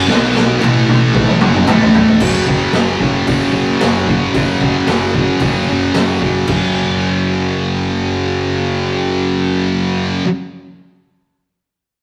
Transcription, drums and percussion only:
0.09 snare
0.34 snare, clap
0.62 clap, high tom
0.88 high tom
1.14 kick, mid tom
1.27 mid tom
1.41 mid tom
1.54 mid tom
1.67 clap, mid tom
1.81 floor tom
1.94 floor tom
2.08 floor tom
2.20 kick, crash
2.48 kick
2.73 snare, open hi-hat
3.01 kick
3.27 kick, open hi-hat
3.81 snare, open hi-hat
4.07 kick
4.34 kick, open hi-hat
4.61 kick
4.87 snare, open hi-hat
5.14 kick
5.40 kick, open hi-hat
5.94 snare, open hi-hat
6.21 kick
6.47 kick, crash

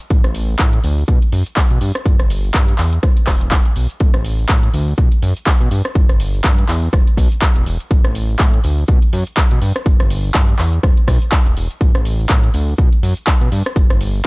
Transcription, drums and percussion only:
0.00 shaker
0.10 kick, closed hi-hat, shaker
0.24 cross-stick, closed hi-hat
0.35 open hi-hat, shaker
0.49 shaker
0.59 kick, clap, closed hi-hat, shaker
0.73 closed hi-hat
0.84 open hi-hat, shaker
0.98 shaker
1.08 kick, closed hi-hat, shaker
1.22 closed hi-hat
1.32 open hi-hat, shaker
1.46 closed hi-hat, shaker
1.56 kick, clap, closed hi-hat, shaker
1.70 closed hi-hat
1.81 open hi-hat, shaker
1.95 cross-stick, closed hi-hat, shaker
2.06 kick, closed hi-hat, shaker
2.20 cross-stick, closed hi-hat, shaker
2.30 open hi-hat, shaker
2.44 shaker
2.54 kick, clap, closed hi-hat, shaker
2.68 closed hi-hat, shaker
2.78 clap, open hi-hat, shaker
2.93 closed hi-hat, shaker
3.03 kick, cross-stick, closed hi-hat, shaker
3.17 closed hi-hat, shaker
3.27 kick, cross-stick, clap, open hi-hat, shaker
3.41 closed hi-hat, shaker
3.51 kick, clap, closed hi-hat, shaker
3.65 closed hi-hat
3.76 open hi-hat, shaker
3.90 closed hi-hat, shaker
4.00 kick, closed hi-hat, shaker
4.14 cross-stick, closed hi-hat
4.25 open hi-hat, shaker
4.39 shaker
4.49 kick, clap, closed hi-hat, shaker
4.63 closed hi-hat
4.74 open hi-hat, shaker
4.88 shaker
4.98 kick, closed hi-hat, shaker
5.12 closed hi-hat
5.22 open hi-hat, shaker
5.37 closed hi-hat, shaker
5.46 kick, clap, closed hi-hat, shaker
5.61 closed hi-hat
5.71 open hi-hat, shaker
5.85 cross-stick, closed hi-hat, shaker
5.95 kick, closed hi-hat, shaker
6.09 cross-stick, closed hi-hat
6.20 open hi-hat, shaker
6.34 shaker
6.44 kick, clap, closed hi-hat, shaker
6.58 closed hi-hat
6.69 clap, open hi-hat, shaker
6.83 shaker
6.93 kick, cross-stick, closed hi-hat, shaker
7.07 closed hi-hat
7.17 kick, open hi-hat, shaker
7.32 closed hi-hat, shaker
7.42 kick, clap, closed hi-hat, shaker
7.56 closed hi-hat
7.66 open hi-hat, shaker
7.80 closed hi-hat, shaker
7.91 kick, closed hi-hat, shaker
8.04 cross-stick, closed hi-hat
8.15 open hi-hat, shaker
8.29 shaker
8.39 kick, clap, closed hi-hat, shaker
8.53 closed hi-hat
8.64 open hi-hat, shaker
8.78 shaker
8.88 kick, closed hi-hat, shaker
9.02 closed hi-hat
9.13 open hi-hat, shaker
9.27 closed hi-hat, shaker
9.37 kick, clap, closed hi-hat, shaker
9.51 closed hi-hat
9.62 open hi-hat, shaker
9.76 cross-stick, closed hi-hat, shaker
9.86 kick, closed hi-hat, shaker
10.00 cross-stick, closed hi-hat, shaker
10.10 open hi-hat, shaker
10.24 shaker
10.34 kick, clap, closed hi-hat, shaker
10.49 closed hi-hat
10.59 clap, open hi-hat, shaker
10.73 closed hi-hat, shaker
10.83 kick, cross-stick, closed hi-hat, shaker
10.97 closed hi-hat
11.08 kick, cross-stick, open hi-hat, shaker
11.22 closed hi-hat, shaker
11.32 kick, clap, closed hi-hat, shaker
11.46 closed hi-hat, shaker
11.57 open hi-hat, shaker
11.71 closed hi-hat, shaker
11.81 kick, closed hi-hat, shaker
11.95 cross-stick, closed hi-hat
12.05 open hi-hat, shaker
12.20 shaker
12.29 kick, clap, closed hi-hat, shaker
12.44 closed hi-hat
12.54 open hi-hat, shaker
12.68 shaker
12.78 kick, closed hi-hat, shaker
12.93 closed hi-hat
13.03 open hi-hat, shaker
13.17 closed hi-hat, shaker
13.27 kick, clap, closed hi-hat, shaker
13.41 closed hi-hat
13.52 open hi-hat, shaker
13.66 cross-stick, closed hi-hat, shaker
13.76 kick, closed hi-hat, shaker
13.90 cross-stick, closed hi-hat
14.01 open hi-hat, shaker
14.15 shaker

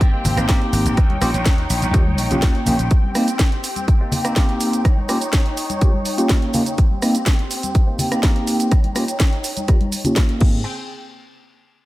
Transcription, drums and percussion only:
0.01 kick, closed hi-hat, tambourine, shaker
0.25 open hi-hat, tambourine, low conga, shaker
0.37 cross-stick, closed hi-hat, tambourine, shaker
0.49 kick, snare, closed hi-hat, shaker
0.61 closed hi-hat, tambourine
0.73 open hi-hat, tambourine, shaker
0.85 closed hi-hat, tambourine, shaker
0.97 kick, cross-stick, closed hi-hat, shaker
1.10 closed hi-hat, tambourine, high conga
1.22 cross-stick, open hi-hat, tambourine, shaker
1.34 closed hi-hat, tambourine, shaker
1.46 kick, snare, closed hi-hat, shaker
1.58 closed hi-hat, tambourine
1.70 open hi-hat, tambourine, shaker
1.82 closed hi-hat, tambourine, high conga, shaker
1.94 kick, closed hi-hat, tambourine, shaker
2.07 high conga
2.18 open hi-hat, tambourine, shaker
2.31 closed hi-hat, tambourine, low conga, shaker
2.42 kick, snare, closed hi-hat, shaker
2.55 closed hi-hat, tambourine
2.66 open hi-hat, tambourine, low conga, shaker
2.79 closed hi-hat, tambourine, shaker
2.91 kick, closed hi-hat, shaker
3.04 high conga
3.15 cross-stick, open hi-hat, tambourine, shaker
3.28 closed hi-hat, tambourine, shaker
3.39 kick, snare, closed hi-hat, shaker
3.52 closed hi-hat
3.64 open hi-hat, tambourine, shaker
3.76 closed hi-hat, tambourine, high conga, shaker
3.88 kick, closed hi-hat, shaker
4.12 open hi-hat, tambourine, low conga, shaker
4.25 cross-stick, closed hi-hat, shaker
4.36 kick, snare, closed hi-hat, tambourine, shaker
4.49 closed hi-hat, tambourine
4.61 open hi-hat, tambourine, shaker
4.73 closed hi-hat, tambourine, shaker
4.85 kick, cross-stick, closed hi-hat, shaker
4.97 high conga
5.09 cross-stick, open hi-hat, shaker
5.21 closed hi-hat, tambourine, shaker
5.33 kick, snare, closed hi-hat, shaker
5.46 closed hi-hat
5.57 open hi-hat, tambourine, shaker
5.70 closed hi-hat, tambourine, high conga, shaker
5.81 kick, closed hi-hat, shaker
5.94 high conga
6.05 open hi-hat, tambourine, shaker
6.18 closed hi-hat, shaker
6.29 kick, snare, closed hi-hat, shaker
6.42 closed hi-hat
6.54 open hi-hat, tambourine, low conga, shaker
6.66 closed hi-hat, tambourine, shaker
6.78 kick, closed hi-hat, shaker
6.91 high conga
7.02 cross-stick, open hi-hat, tambourine, shaker
7.15 closed hi-hat, tambourine, shaker
7.26 kick, snare, closed hi-hat, shaker
7.39 closed hi-hat
7.51 open hi-hat, shaker
7.63 closed hi-hat, tambourine, high conga, shaker
7.75 kick, closed hi-hat, shaker
7.99 open hi-hat, tambourine, low conga, shaker
8.11 cross-stick, closed hi-hat, tambourine, shaker
8.23 kick, snare, closed hi-hat, shaker
8.36 closed hi-hat, tambourine
8.47 open hi-hat, shaker
8.60 closed hi-hat, tambourine, shaker
8.72 kick, cross-stick, closed hi-hat, shaker
8.84 closed hi-hat, tambourine, high conga
8.96 cross-stick, open hi-hat, tambourine, shaker
9.08 closed hi-hat, shaker
9.20 kick, snare, closed hi-hat, tambourine, shaker
9.33 closed hi-hat
9.44 open hi-hat, tambourine, shaker
9.57 closed hi-hat, tambourine, high conga, shaker
9.68 kick, cross-stick, closed hi-hat, shaker
9.81 closed hi-hat, tambourine, high conga
9.92 open hi-hat, tambourine, shaker
10.04 closed hi-hat, tambourine, low conga, shaker
10.16 kick, snare, closed hi-hat, tambourine, shaker
10.29 closed hi-hat, tambourine
10.40 kick, crash, tambourine, low conga
10.53 tambourine

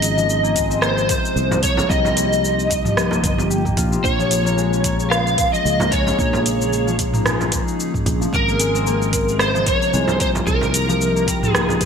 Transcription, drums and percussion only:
0.02 closed hi-hat, cabasa
0.18 cabasa
0.30 cabasa
0.45 cabasa
0.56 kick, closed hi-hat, cabasa
0.71 cabasa
0.82 cross-stick, cabasa
0.98 cabasa
1.09 kick, closed hi-hat, cabasa
1.25 cabasa
1.37 cabasa
1.52 frame drum, cabasa
1.63 kick, closed hi-hat, cabasa
1.77 frame drum, cabasa
1.90 kick, cabasa
2.05 frame drum, cabasa
2.17 closed hi-hat, cabasa
2.33 cabasa
2.45 cabasa
2.59 cabasa
2.70 kick, closed hi-hat, cabasa
2.85 mid tom, cabasa
2.97 cross-stick, cabasa
3.11 frame drum, cabasa
3.24 kick, closed hi-hat, cabasa
3.38 frame drum, cabasa
3.51 cabasa
3.65 kick, mid tom, cabasa
3.77 kick, closed hi-hat, cabasa
3.93 cabasa
4.04 kick, cabasa
4.20 cabasa
4.31 closed hi-hat, cabasa
4.47 cabasa
4.58 cabasa
4.73 cabasa
4.84 kick, closed hi-hat, cabasa
5.00 cabasa
5.11 cross-stick, cabasa
5.27 cabasa
5.38 kick, closed hi-hat, cabasa
5.54 cabasa
5.66 cabasa
5.80 frame drum, cabasa
5.92 kick, closed hi-hat, cabasa
6.07 frame drum, cabasa
6.19 kick, cabasa
6.33 frame drum, cabasa
6.46 closed hi-hat, cabasa
6.62 cabasa
6.73 cabasa
6.88 cabasa
6.99 kick, closed hi-hat, cabasa
7.14 mid tom, cabasa
7.26 cross-stick, cabasa
7.41 frame drum, cabasa
7.52 kick, closed hi-hat, cabasa
7.68 cabasa
7.80 cabasa
7.94 kick, mid tom, cabasa
8.06 kick, closed hi-hat, cabasa
8.22 cabasa
8.33 kick, cabasa
8.49 cabasa
8.60 closed hi-hat, cabasa
8.75 cabasa
8.87 cabasa
9.02 cabasa
9.13 kick, closed hi-hat, cabasa
9.29 cabasa
9.39 cross-stick, cabasa
9.56 cabasa
9.66 kick, closed hi-hat, cabasa
9.82 cabasa
9.94 cabasa
10.08 frame drum, cabasa
10.20 kick, closed hi-hat, cabasa
10.35 frame drum, cabasa
10.47 kick, cabasa
10.61 frame drum, cabasa
10.74 closed hi-hat, cabasa
10.90 cabasa
11.01 cabasa
11.17 cabasa
11.27 kick, closed hi-hat, cabasa
11.43 mid tom, cabasa
11.55 cross-stick, cabasa
11.69 frame drum, cabasa
11.81 kick, closed hi-hat, cabasa

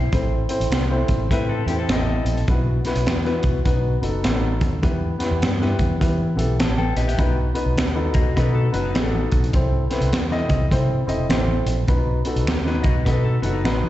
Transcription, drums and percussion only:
0.13 kick, closed hi-hat
0.49 closed hi-hat
0.61 closed hi-hat
0.72 finger snap, snare, closed hi-hat
1.08 kick, closed hi-hat
1.31 kick, closed hi-hat
1.68 closed hi-hat
1.89 finger snap, snare, closed hi-hat
2.26 closed hi-hat
2.38 closed hi-hat
2.48 kick, closed hi-hat
2.85 snare, closed hi-hat
2.96 closed hi-hat
3.06 finger snap, snare, closed hi-hat
3.25 snare
3.43 kick, closed hi-hat
3.65 kick, closed hi-hat
4.03 closed hi-hat
4.24 finger snap, snare, closed hi-hat
4.61 kick, closed hi-hat
4.83 kick, closed hi-hat, muted conga
5.20 snare, closed hi-hat
5.42 finger snap, snare, closed hi-hat, high conga
5.62 snare
5.79 kick, closed hi-hat, low conga
6.01 kick, closed hi-hat, muted conga
6.39 closed hi-hat, muted conga
6.60 finger snap, snare, closed hi-hat, high conga
6.78 high conga
6.97 closed hi-hat
7.09 closed hi-hat
7.18 kick, closed hi-hat, muted conga
7.55 closed hi-hat
7.78 finger snap, snare, closed hi-hat, high conga
8.14 kick, closed hi-hat, low conga
8.37 kick, closed hi-hat, muted conga
8.74 closed hi-hat, muted conga
8.95 finger snap, snare, closed hi-hat, high conga
9.14 high conga
9.32 kick, closed hi-hat
9.44 closed hi-hat
9.53 kick, closed hi-hat, muted conga
9.91 snare, closed hi-hat
10.02 closed hi-hat
10.13 finger snap, snare, closed hi-hat, high conga
10.31 snare
10.49 kick, closed hi-hat, low conga
10.71 kick, closed hi-hat, muted conga
11.08 closed hi-hat, muted conga
11.29 finger snap, snare, closed hi-hat, high conga
11.48 high conga
11.67 closed hi-hat
11.88 kick, closed hi-hat, muted conga
12.25 closed hi-hat
12.36 closed hi-hat
12.47 finger snap, snare, closed hi-hat, high conga
12.66 snare
12.84 kick, closed hi-hat, low conga
13.06 kick, closed hi-hat, muted conga
13.43 closed hi-hat, muted conga
13.65 finger snap, snare, high conga
13.84 high conga

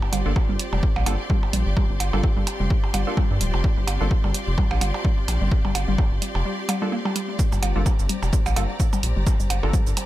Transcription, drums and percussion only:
0.02 percussion blips
0.13 closed hi-hat, percussion blips
0.36 kick, percussion blips
0.59 closed hi-hat
0.73 percussion blips
0.83 kick
0.96 percussion blips
1.06 closed hi-hat, percussion blips
1.30 kick
1.43 percussion blips
1.53 closed hi-hat
1.77 kick, percussion blips
2.00 closed hi-hat, percussion blips
2.13 percussion blips
2.24 kick
2.47 closed hi-hat, percussion blips
2.70 kick
2.84 percussion blips
2.94 closed hi-hat, percussion blips
3.17 kick, percussion blips
3.41 closed hi-hat
3.54 percussion blips
3.64 kick
3.87 closed hi-hat, percussion blips
4.11 kick
4.24 percussion blips
4.34 closed hi-hat
4.58 kick, percussion blips
4.71 percussion blips
4.81 closed hi-hat, percussion blips
4.94 percussion blips
5.05 kick
5.28 closed hi-hat, percussion blips
5.51 kick
5.65 percussion blips
5.75 closed hi-hat, percussion blips
5.98 kick, percussion blips
6.22 closed hi-hat
6.35 percussion blips
6.69 closed hi-hat, percussion blips
7.05 percussion blips
7.16 closed hi-hat
7.39 kick, shaker
7.52 percussion blips, shaker
7.63 closed hi-hat, percussion blips
7.86 kick, percussion blips, shaker
7.99 shaker
8.09 closed hi-hat
8.23 percussion blips, shaker
8.33 kick, shaker
8.46 percussion blips, shaker
8.56 closed hi-hat, percussion blips
8.80 kick, shaker
8.93 percussion blips, shaker
9.03 closed hi-hat
9.27 kick, percussion blips, shaker
9.40 shaker
9.50 closed hi-hat, percussion blips
9.63 percussion blips
9.73 kick, shaker
9.87 shaker
9.97 closed hi-hat, percussion blips

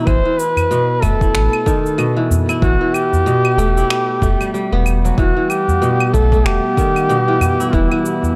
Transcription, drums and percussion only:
0.07 kick, cabasa, claves
0.39 cabasa
0.56 udu, cabasa, claves
0.72 cabasa
1.02 kick, udu, cabasa, claves
1.21 kick, cabasa
1.35 finger snap, cabasa
1.53 claves
1.66 kick, cabasa
1.86 cabasa
1.99 cabasa, claves
2.31 udu, cabasa
2.49 cabasa, claves
2.62 kick, cabasa
2.94 cabasa, claves
3.13 udu, cabasa
3.27 cabasa
3.45 claves
3.59 cabasa
3.77 cabasa
3.90 finger snap, cabasa, claves
4.21 kick, udu, cabasa
4.41 cabasa, claves
4.55 cabasa
4.86 cabasa, claves
5.05 cabasa
5.18 kick, cabasa
5.50 cabasa, claves
5.68 udu, cabasa
5.83 cabasa
6.00 claves
6.13 kick, udu, cabasa
6.32 kick, cabasa
6.46 finger snap, cabasa, claves
6.77 kick, cabasa
6.96 cabasa, claves
7.10 cabasa
7.41 udu, cabasa, claves
7.60 cabasa
7.73 kick, cabasa
7.92 claves
8.05 cabasa
8.23 udu, cabasa

